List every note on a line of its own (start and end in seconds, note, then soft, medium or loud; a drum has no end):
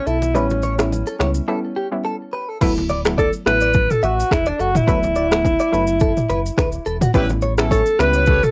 0.07 0.36 B1 medium
0.07 0.37 E4 medium
0.07 0.17 A4 medium
0.07 high bongo soft
0.07 shaker soft
0.22 low bongo medium
0.22 shaker loud
0.34 1.03 A1 loud
0.34 0.57 G3 medium
0.34 0.57 B3 medium
0.34 0.57 C#4 medium
0.34 0.92 C#4 medium
0.34 0.57 E4 loud
0.34 0.45 B4 medium
0.34 low conga medium
0.34 shaker medium
0.50 low bongo medium
0.50 shaker medium
0.62 0.74 C#5 medium
0.62 low bongo soft
0.62 shaker medium
0.78 0.99 G3 medium
0.78 0.99 B3 medium
0.78 0.99 C#4 medium
0.78 0.99 E4 medium
0.78 finger snap medium
0.78 cross-stick loud
0.78 shaker medium
0.92 high bongo medium
0.92 low conga medium
0.92 shaker medium
1.07 1.16 A4 medium
1.07 shaker medium
1.19 1.41 C#2 medium
1.19 1.42 G3 medium
1.19 1.42 B3 medium
1.19 1.42 C#4 medium
1.19 1.42 E4 medium
1.19 1.30 C#5 medium
1.19 finger snap medium
1.19 cross-stick medium
1.19 high bongo medium
1.19 shaker medium
1.34 shaker medium
1.48 1.70 G3 medium
1.48 1.70 B3 medium
1.48 1.70 C#4 medium
1.48 1.70 E4 loud
1.48 1.59 A4 medium
1.76 1.87 G4 medium
1.91 2.12 G3 medium
1.91 2.12 B3 medium
1.91 2.12 C#4 medium
1.91 2.13 E4 medium
2.05 2.15 A4 medium
2.33 2.49 B4 medium
2.49 2.57 A4 medium
2.61 3.30 D1 loud
2.61 2.83 F#3 medium
2.61 2.83 A3 medium
2.61 2.83 B3 medium
2.61 2.83 E4 loud
2.61 2.72 B4 loud
2.61 kick loud
2.61 crash medium
2.61 low conga medium
2.61 shaker medium
2.77 low bongo medium
2.77 shaker medium
2.89 3.00 D5 medium
2.89 low bongo medium
2.89 shaker medium
3.05 3.26 F#3 medium
3.05 3.26 A3 medium
3.05 3.26 B3 medium
3.05 3.26 E4 medium
3.05 finger snap medium
3.05 cross-stick loud
3.05 shaker medium
3.18 3.31 A4 loud
3.18 3.28 D5 medium
3.18 kick loud
3.18 high bongo medium
3.18 low conga medium
3.18 shaker medium
3.33 shaker medium
3.46 3.88 A1 medium
3.46 3.68 F#3 medium
3.46 3.68 A3 medium
3.46 3.68 B3 medium
3.46 3.68 E4 medium
3.46 3.57 B4 medium
3.46 3.93 B4 loud
3.46 finger snap medium
3.46 cross-stick medium
3.46 high bongo medium
3.46 shaker medium
3.61 3.70 D5 medium
3.61 shaker medium
3.74 kick loud
3.74 low conga medium
3.74 shaker medium
3.90 4.05 A4 loud
3.90 mid tom medium
3.90 shaker medium
4.03 4.24 A1 loud
4.03 4.33 F#4 medium
4.03 4.13 E5 medium
4.03 low bongo medium
4.03 shaker medium
4.20 shaker medium
4.31 4.52 E1 medium
4.31 4.49 E4 loud
4.31 finger snap medium
4.31 kick medium
4.31 cross-stick loud
4.31 high bongo medium
4.31 shaker medium
4.46 4.62 D4 medium
4.46 4.55 D5 medium
4.46 shaker medium
4.59 4.80 F#1 medium
4.59 4.78 F#4 loud
4.59 4.70 A4 medium
4.59 shaker soft
4.75 6.86 E4 loud
4.75 mid tom medium
4.75 low bongo medium
4.75 shaker loud
4.87 5.56 D1 loud
4.87 5.09 F#3 medium
4.87 5.10 A3 medium
4.87 5.10 B3 medium
4.87 5.10 E4 loud
4.87 4.98 B4 medium
4.87 kick loud
4.87 low conga medium
4.87 shaker medium
5.03 low bongo medium
5.03 shaker medium
5.15 5.26 D5 medium
5.15 low bongo medium
5.15 shaker medium
5.31 5.52 F#3 medium
5.31 5.52 A3 medium
5.31 5.52 B3 medium
5.31 5.52 E4 medium
5.31 finger snap medium
5.31 cross-stick loud
5.31 shaker medium
5.45 kick loud
5.45 high bongo medium
5.45 low conga medium
5.45 shaker medium
5.59 5.68 D5 medium
5.59 shaker medium
5.72 6.14 F#1 medium
5.72 5.94 F#3 medium
5.72 5.94 A3 medium
5.72 5.94 B3 medium
5.72 5.95 E4 medium
5.72 5.83 B4 medium
5.72 high bongo medium
5.72 shaker medium
5.87 shaker medium
6.00 6.11 A4 medium
6.00 kick loud
6.00 low conga medium
6.00 shaker medium
6.17 mid tom medium
6.17 shaker medium
6.29 6.50 F#1 loud
6.29 6.40 B4 medium
6.29 low bongo medium
6.29 shaker medium
6.46 shaker loud
6.57 6.78 D1 loud
6.57 6.68 B4 medium
6.57 finger snap medium
6.57 kick medium
6.57 cross-stick loud
6.57 high bongo medium
6.57 shaker medium
6.72 shaker medium
6.86 7.07 E1 medium
6.86 6.96 A4 medium
6.86 shaker soft
7.01 7.10 F#4 medium
7.01 mid tom medium
7.01 low bongo medium
7.01 shaker loud
7.14 7.83 A1 loud
7.14 7.36 G3 medium
7.14 7.36 B3 medium
7.14 7.36 C#4 medium
7.14 7.27 E4 loud
7.14 7.36 E4 loud
7.14 7.27 G4 loud
7.14 7.24 B4 loud
7.14 7.27 B4 loud
7.14 kick loud
7.14 low conga medium
7.14 shaker medium
7.29 low bongo medium
7.29 shaker medium
7.42 7.53 C#5 medium
7.42 low bongo medium
7.42 shaker medium
7.58 7.78 G3 medium
7.58 7.79 B3 medium
7.58 7.79 C#4 medium
7.58 7.81 C#4 medium
7.58 7.81 E4 medium
7.58 7.79 E4 medium
7.58 7.81 A4 loud
7.58 finger snap medium
7.58 cross-stick loud
7.58 shaker medium
7.71 8.01 A4 loud
7.71 7.81 C#5 medium
7.71 kick loud
7.71 high bongo medium
7.71 low conga medium
7.71 shaker medium
7.86 shaker medium
7.99 8.41 C#2 medium
7.99 8.21 G3 medium
7.99 8.21 B3 medium
7.99 8.21 C#4 medium
7.99 8.22 E4 medium
7.99 8.21 E4 medium
7.99 8.22 G4 medium
7.99 8.15 B4 medium
7.99 8.22 B4 loud
7.99 8.45 B4 loud
7.99 finger snap medium
7.99 cross-stick medium
7.99 high bongo medium
7.99 shaker medium
8.13 8.23 C#5 medium
8.13 shaker medium
8.26 8.40 G4 medium
8.26 8.40 A4 medium
8.26 8.40 C#5 loud
8.26 kick loud
8.26 low conga medium
8.26 shaker medium
8.43 8.51 A4 loud
8.43 mid tom medium
8.43 shaker medium